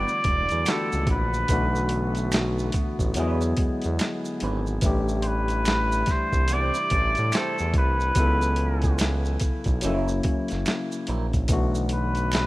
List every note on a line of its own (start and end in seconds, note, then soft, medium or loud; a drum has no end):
0.00 4.79 D3 medium
0.00 0.61 E3 medium
0.00 1.32 G3 medium
0.00 0.62 A3 medium
0.00 1.32 B3 medium
0.00 0.63 D4 medium
0.00 1.32 E4 medium
0.00 0.63 F#4 medium
0.00 0.71 D5 loud
0.08 maracas soft
0.24 0.48 E1 medium
0.24 kick medium
0.24 closed hi-hat medium
0.49 0.65 E2 medium
0.49 closed hi-hat soft
0.49 maracas soft
0.66 1.48 E3 soft
0.66 1.49 A3 soft
0.66 0.88 B3 medium
0.66 0.89 D4 medium
0.66 1.50 D4 soft
0.66 1.50 F#4 medium
0.66 0.89 G4 medium
0.66 1.09 A4 medium
0.66 0.89 B4 medium
0.66 finger snap medium
0.66 snare loud
0.66 closed hi-hat medium
0.66 maracas medium
0.92 1.06 C#2 medium
0.92 maracas soft
1.07 1.45 A#1 medium
1.07 kick medium
1.07 closed hi-hat medium
1.11 2.30 B4 medium
1.34 maracas soft
1.48 2.70 B1 loud
1.48 3.12 E3 medium
1.48 3.14 A3 medium
1.48 3.13 A3 medium
1.48 4.79 B3 medium
1.48 3.14 D4 medium
1.48 3.14 F#4 medium
1.48 kick loud
1.48 closed hi-hat medium
1.48 maracas medium
1.53 3.14 F#4 medium
1.75 maracas soft
1.89 closed hi-hat medium
2.15 closed hi-hat soft
2.15 maracas soft
2.32 finger snap medium
2.32 snare loud
2.32 closed hi-hat medium
2.32 maracas medium
2.59 maracas soft
2.72 2.85 A1 soft
2.72 kick medium
2.72 closed hi-hat medium
2.72 maracas soft
2.99 3.14 A1 medium
2.99 kick medium
2.99 maracas soft
3.14 3.54 E2 loud
3.14 4.79 F#3 medium
3.14 4.81 G#3 medium
3.14 3.42 G#3 medium
3.14 4.80 B3 medium
3.14 3.42 D4 medium
3.14 11.45 E4 medium
3.14 3.42 E4 medium
3.14 4.80 E4 medium
3.14 3.42 B4 medium
3.14 closed hi-hat medium
3.14 maracas medium
3.20 4.81 G#4 medium
3.41 maracas soft
3.57 3.69 E2 soft
3.57 kick medium
3.57 closed hi-hat medium
3.82 3.98 E2 medium
3.82 closed hi-hat soft
3.82 maracas soft
3.99 finger snap medium
3.99 snare loud
3.99 closed hi-hat medium
3.99 maracas medium
4.25 maracas soft
4.40 4.79 G#1 medium
4.40 4.59 G#3 medium
4.40 4.59 D4 medium
4.40 4.59 E4 medium
4.40 4.59 B4 medium
4.40 closed hi-hat medium
4.67 maracas soft
4.81 6.04 A1 loud
4.81 8.12 C3 medium
4.81 8.12 E3 medium
4.81 8.12 G3 medium
4.81 8.12 A3 medium
4.81 8.13 D4 medium
4.81 kick loud
4.81 closed hi-hat medium
4.81 maracas medium
4.86 8.14 G4 medium
5.08 maracas soft
5.22 5.28 C5 medium
5.22 closed hi-hat medium
5.27 6.13 B4 medium
5.48 closed hi-hat soft
5.48 maracas soft
5.65 finger snap medium
5.65 snare loud
5.65 closed hi-hat medium
5.65 maracas medium
5.92 maracas soft
6.06 6.18 C2 soft
6.06 kick medium
6.06 snare soft
6.06 closed hi-hat medium
6.06 maracas soft
6.11 6.54 C5 medium
6.33 6.71 C2 medium
6.33 kick medium
6.33 maracas soft
6.48 6.75 C4 medium
6.48 6.75 E4 medium
6.48 6.75 G4 medium
6.48 closed hi-hat medium
6.48 maracas medium
6.52 6.76 C5 medium
6.52 7.38 D5 loud
6.74 maracas soft
6.90 7.15 A1 medium
6.90 kick medium
6.90 closed hi-hat medium
7.15 7.32 A2 medium
7.15 closed hi-hat soft
7.15 maracas soft
7.32 7.55 C4 medium
7.32 7.55 E4 medium
7.32 7.55 G4 medium
7.32 7.56 C5 medium
7.32 finger snap medium
7.32 snare loud
7.32 closed hi-hat medium
7.32 maracas medium
7.36 7.76 A4 medium
7.58 7.76 E2 medium
7.58 maracas soft
7.74 8.12 C2 medium
7.74 8.97 B4 medium
7.74 kick medium
7.74 closed hi-hat medium
8.00 maracas soft
8.15 9.37 C#2 loud
8.15 11.46 C#3 medium
8.15 9.65 E3 medium
8.15 9.79 F#3 medium
8.15 9.65 B3 medium
8.15 9.80 B3 medium
8.15 9.80 E4 medium
8.15 kick loud
8.15 closed hi-hat medium
8.15 maracas medium
8.20 9.81 A4 medium
8.42 maracas soft
8.56 closed hi-hat medium
8.82 kick medium
8.82 closed hi-hat soft
8.82 maracas soft
8.99 finger snap medium
8.99 snare loud
8.99 closed hi-hat medium
8.99 maracas medium
9.25 maracas soft
9.40 9.52 B1 soft
9.40 kick medium
9.40 closed hi-hat medium
9.40 maracas medium
9.64 9.81 B1 medium
9.64 kick medium
9.64 closed hi-hat soft
9.64 maracas soft
9.81 10.21 F#1 loud
9.81 11.47 F#3 medium
9.81 11.46 F#3 medium
9.81 10.08 F#3 medium
9.81 11.47 A#3 medium
9.81 11.46 A#3 medium
9.81 10.08 C#4 medium
9.81 11.47 C#4 medium
9.81 10.09 E4 medium
9.81 10.09 A#4 medium
9.81 closed hi-hat medium
9.81 maracas medium
9.86 11.47 E4 medium
10.08 maracas soft
10.23 10.35 F#1 soft
10.23 kick medium
10.23 closed hi-hat medium
10.48 10.65 F#1 medium
10.48 snare soft
10.48 closed hi-hat soft
10.48 maracas soft
10.66 finger snap medium
10.66 snare loud
10.66 closed hi-hat medium
10.66 maracas medium
10.92 maracas soft
11.07 11.45 A#1 medium
11.07 11.25 F#3 medium
11.07 11.25 C#4 medium
11.07 11.26 E4 medium
11.07 11.26 A#4 medium
11.07 closed hi-hat medium
11.33 kick medium
11.33 closed hi-hat soft
11.33 maracas soft
11.48 12.47 B1 loud
11.48 12.47 D3 medium
11.48 12.47 E3 medium
11.48 12.47 A3 medium
11.48 12.47 B3 medium
11.48 12.47 D4 medium
11.48 12.47 F#4 medium
11.48 kick loud
11.48 closed hi-hat medium
11.48 maracas medium
11.53 12.47 F#4 medium
11.75 maracas soft
11.89 closed hi-hat medium
11.94 12.47 B4 medium
12.15 closed hi-hat soft
12.15 maracas soft
12.32 finger snap medium
12.32 snare loud
12.32 closed hi-hat medium
12.32 maracas medium